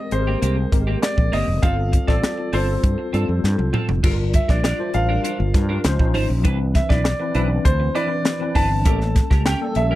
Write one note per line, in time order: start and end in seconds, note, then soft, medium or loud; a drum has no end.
0.00 0.11 G#3 medium
0.00 0.12 C4 medium
0.00 0.12 G4 medium
0.00 0.19 A#4 medium
0.00 0.13 D#5 loud
0.11 0.35 G#1 medium
0.11 0.67 G#3 medium
0.11 0.67 C4 medium
0.11 0.67 G4 medium
0.11 0.19 G#4 medium
0.11 1.05 C5 medium
0.11 muted clean electric guitar stroke soft
0.11 closed hi-hat medium
0.19 0.71 A#4 medium
0.27 0.39 A#3 medium
0.27 0.38 C4 soft
0.27 0.38 G4 medium
0.42 0.65 C2 medium
0.42 0.56 A#3 medium
0.42 0.56 C4 medium
0.42 0.56 G4 medium
0.42 closed hi-hat medium
0.57 muted clean electric guitar stroke soft
0.72 0.95 G#1 medium
0.72 1.55 G#3 medium
0.72 1.55 C4 medium
0.72 1.55 G4 medium
0.72 1.55 A#4 medium
0.72 muted clean electric guitar stroke soft
0.72 kick medium
0.72 closed hi-hat medium
0.87 0.99 A#3 medium
0.87 0.98 C4 medium
0.87 0.98 G4 medium
1.02 1.33 D5 medium
1.02 snare loud
1.02 closed hi-hat medium
1.17 1.29 A#1 medium
1.17 muted clean electric guitar stroke soft
1.17 kick medium
1.32 1.44 G1 medium
1.32 1.46 A#3 medium
1.32 1.47 C4 medium
1.32 1.46 G4 medium
1.32 1.64 D#5 medium
1.32 open hi-hat medium
1.48 1.59 F1 medium
1.48 muted clean electric guitar stroke soft
1.62 1.97 G1 loud
1.62 2.04 G3 medium
1.62 1.77 C4 medium
1.62 2.04 C4 medium
1.62 2.04 F4 medium
1.62 1.77 F4 medium
1.62 2.05 A4 medium
1.62 1.76 A4 medium
1.62 2.05 F5 medium
1.62 kick loud
1.62 closed hi-hat medium
1.77 muted clean electric guitar stroke soft
1.92 muted clean electric guitar stroke soft
1.92 kick medium
1.92 closed hi-hat medium
2.07 2.19 A1 medium
2.07 2.49 G3 medium
2.07 2.49 C4 medium
2.07 2.19 C4 soft
2.07 2.19 F4 medium
2.07 2.50 F4 medium
2.07 2.19 A4 medium
2.07 2.50 A4 medium
2.07 2.54 D5 medium
2.07 kick medium
2.07 snare soft
2.23 snare loud
2.23 closed hi-hat medium
2.38 muted clean electric guitar stroke soft
2.53 2.76 G1 medium
2.53 3.08 G3 medium
2.53 2.67 C4 medium
2.53 3.08 C4 medium
2.53 2.67 F4 medium
2.53 3.09 F4 medium
2.53 2.67 A4 medium
2.53 3.09 A4 medium
2.53 3.70 C5 medium
2.53 open hi-hat medium
2.68 muted clean electric guitar stroke soft
2.83 2.95 G2 medium
2.83 kick medium
2.83 closed hi-hat medium
2.98 muted clean electric guitar stroke soft
3.13 3.25 G2 medium
3.13 3.96 G3 medium
3.13 3.27 C4 medium
3.13 3.96 C4 medium
3.13 3.28 F4 medium
3.13 3.97 F4 medium
3.13 3.27 A4 medium
3.13 3.97 A4 medium
3.13 closed hi-hat medium
3.28 3.40 F2 medium
3.28 muted clean electric guitar stroke medium
3.44 3.55 G2 medium
3.44 snare soft
3.58 3.70 C2 medium
3.58 muted clean electric guitar stroke soft
3.58 high tom medium
3.73 3.87 C4 medium
3.73 3.88 F4 medium
3.73 3.87 A4 medium
3.73 mid tom medium
3.89 4.00 F1 medium
3.89 muted clean electric guitar stroke soft
3.89 floor tom medium
4.03 4.38 G1 medium
4.03 4.73 G3 medium
4.03 4.17 D4 medium
4.03 4.73 D4 medium
4.03 4.18 F4 medium
4.03 4.73 F4 medium
4.03 4.11 A4 medium
4.03 4.17 A#4 medium
4.03 kick loud
4.03 crash medium
4.11 4.77 A#4 medium
4.18 muted clean electric guitar stroke soft
4.33 4.50 E5 medium
4.33 muted clean electric guitar stroke soft
4.33 kick medium
4.33 closed hi-hat medium
4.48 4.72 A#1 medium
4.48 4.60 D4 soft
4.48 4.60 F4 soft
4.48 4.60 A#4 medium
4.48 4.63 D5 medium
4.48 kick medium
4.48 snare soft
4.63 4.78 D4 medium
4.63 4.78 F4 medium
4.63 4.77 A#4 medium
4.63 4.95 D5 medium
4.63 snare loud
4.63 closed hi-hat medium
4.79 4.92 G3 medium
4.79 4.93 D4 medium
4.79 4.93 F4 medium
4.79 4.93 C5 medium
4.79 muted clean electric guitar stroke soft
4.93 5.17 A1 medium
4.93 5.49 G3 medium
4.93 5.49 D4 medium
4.93 5.49 F4 medium
4.93 5.50 A#4 medium
4.93 6.11 F5 medium
4.93 muted clean electric guitar stroke soft
4.93 closed hi-hat medium
5.09 5.20 D4 soft
5.09 5.20 F4 medium
5.09 5.20 A#4 medium
5.24 5.38 D4 medium
5.24 5.38 F4 medium
5.24 5.38 A#4 medium
5.24 closed hi-hat medium
5.39 5.51 G1 loud
5.39 muted clean electric guitar stroke soft
5.54 5.77 G2 medium
5.54 5.84 G3 medium
5.54 5.85 D4 medium
5.54 5.85 F4 medium
5.54 5.85 A#4 medium
5.54 muted clean electric guitar stroke soft
5.54 kick loud
5.54 snare soft
5.54 closed hi-hat medium
5.69 5.81 D4 medium
5.69 5.80 F4 medium
5.69 5.80 A#4 medium
5.84 5.96 C#2 medium
5.84 5.98 F3 medium
5.84 5.98 C#4 medium
5.84 5.98 D#4 medium
5.84 5.99 C5 loud
5.84 snare loud
5.84 closed hi-hat medium
5.99 6.15 A#1 medium
5.99 6.41 F3 medium
5.99 6.41 C#4 medium
5.99 6.41 D#4 medium
5.99 6.41 C5 medium
5.99 muted clean electric guitar stroke soft
5.99 kick medium
6.14 6.26 G#1 medium
6.14 6.28 D#4 medium
6.14 6.29 F4 medium
6.14 6.28 C5 medium
6.14 open hi-hat medium
6.29 6.45 A#1 loud
6.29 muted clean electric guitar stroke soft
6.44 6.79 C2 loud
6.44 7.14 E3 medium
6.44 7.14 C4 medium
6.44 6.58 D4 medium
6.44 7.14 D4 medium
6.44 6.59 E4 medium
6.44 6.58 B4 medium
6.44 7.14 B4 medium
6.44 kick loud
6.44 closed hi-hat medium
6.59 muted clean electric guitar stroke medium
6.74 6.91 E5 medium
6.74 muted clean electric guitar stroke soft
6.74 kick medium
6.74 snare soft
6.74 closed hi-hat medium
6.89 7.13 B1 medium
6.89 7.01 D4 medium
6.89 7.01 E4 medium
6.89 7.00 B4 medium
6.89 7.03 D5 medium
6.89 kick medium
6.89 snare soft
7.04 7.67 D5 medium
7.04 snare loud
7.04 closed hi-hat medium
7.20 7.33 E3 medium
7.20 7.34 C4 medium
7.20 7.34 D4 medium
7.20 7.34 B4 medium
7.20 muted clean electric guitar stroke soft
7.35 7.58 B1 medium
7.35 7.90 E3 medium
7.35 7.90 C4 medium
7.35 7.49 D4 medium
7.35 7.90 D4 medium
7.35 7.49 E4 medium
7.35 7.49 B4 medium
7.35 7.91 B4 medium
7.35 closed hi-hat medium
7.50 muted clean electric guitar stroke soft
7.65 7.88 D2 medium
7.65 7.93 C5 medium
7.65 kick medium
7.65 closed hi-hat medium
7.80 muted clean electric guitar stroke soft
7.95 8.37 E3 medium
7.95 8.37 C4 medium
7.95 8.09 D4 medium
7.95 8.37 D4 medium
7.95 8.09 E4 medium
7.95 8.09 B4 medium
7.95 8.37 B4 medium
7.95 8.57 D5 medium
7.95 closed hi-hat medium
8.10 muted clean electric guitar stroke soft
8.25 snare loud
8.25 closed hi-hat medium
8.40 8.82 E3 medium
8.40 8.82 C4 medium
8.40 8.82 D4 medium
8.40 8.83 B4 medium
8.40 muted clean electric guitar stroke soft
8.55 8.86 G1 medium
8.55 8.69 D4 medium
8.55 8.70 E4 medium
8.55 8.69 B4 loud
8.55 9.49 A5 loud
8.55 kick medium
8.55 open hi-hat medium
8.70 muted clean electric guitar stroke soft
8.85 9.20 A1 loud
8.85 9.55 G3 medium
8.85 9.55 A#3 medium
8.85 8.99 C#4 medium
8.85 9.55 C#4 medium
8.85 9.00 G4 medium
8.85 9.55 A4 medium
8.85 8.99 A#4 medium
8.85 kick loud
8.85 closed hi-hat medium
9.00 muted clean electric guitar stroke soft
9.00 snare soft
9.15 muted clean electric guitar stroke soft
9.15 kick medium
9.15 snare soft
9.15 closed hi-hat medium
9.30 9.54 C#2 medium
9.30 9.42 C#4 medium
9.30 9.42 G4 medium
9.30 9.42 A#4 medium
9.30 kick medium
9.30 snare soft
9.46 9.60 C#4 medium
9.46 9.60 G4 medium
9.46 9.59 A#4 loud
9.46 9.74 G5 medium
9.46 snare loud
9.46 closed hi-hat medium
9.61 9.75 G3 medium
9.61 9.75 A#3 medium
9.61 9.75 C#4 medium
9.61 9.75 A4 medium
9.61 muted clean electric guitar stroke medium
9.75 9.95 A#1 medium
9.75 9.95 G3 medium
9.75 9.95 A#3 medium
9.75 9.95 C#4 medium
9.75 9.95 A4 medium
9.75 9.95 E5 medium
9.75 muted clean electric guitar stroke soft
9.75 closed hi-hat medium
9.91 9.95 G4 medium
9.91 9.95 A#4 medium